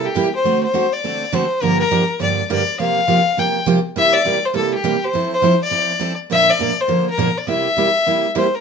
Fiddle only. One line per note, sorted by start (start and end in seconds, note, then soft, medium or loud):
0.05 0.34 G4 medium
0.35 0.62 C5 medium
0.64 0.94 C5 loud
0.93 1.36 D5 medium
1.34 1.63 C5 medium
1.62 1.80 A#4 loud
1.80 2.18 A#4 medium
2.22 2.49 D5 medium
2.51 2.78 D5 loud
2.80 3.41 F5 loud
3.39 3.68 G5 loud
3.98 4.16 E5 loud
4.14 4.46 D5 loud
4.45 4.55 C5 medium
4.56 4.72 A4 medium
4.74 5.06 G4 medium
5.04 5.33 C5 medium
5.34 5.60 C5 medium
5.62 6.16 D5 loud
6.32 6.52 E5 loud
6.50 6.82 D5 loud
6.81 7.08 C5 medium
7.10 7.39 A#4 medium
7.38 7.48 D5 medium
7.49 8.31 E5 loud
8.38 8.56 C5 medium
8.55 8.61 A#4 medium